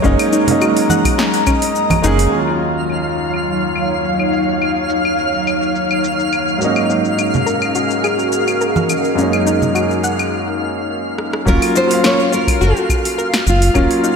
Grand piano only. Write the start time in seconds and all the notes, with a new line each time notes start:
0.02 G#3 A#3 C#4 D#4
0.45 G#3 A#3
0.49 C#4 D#4
2.02 G#3 A#3 C#4 G#4
2.29 D#2 F#3 A#3
2.34 C#4 F4
6.58 G#2 F#3 A#3
6.63 C#4 D#4
9.15 F#2 G#3 A#3
9.20 C#4 D#4
11.45 F#3 A#3 C#4 F4
11.87 F#3 A#3
11.92 C#4 F5
13.74 F#3 A#3 C#4 F4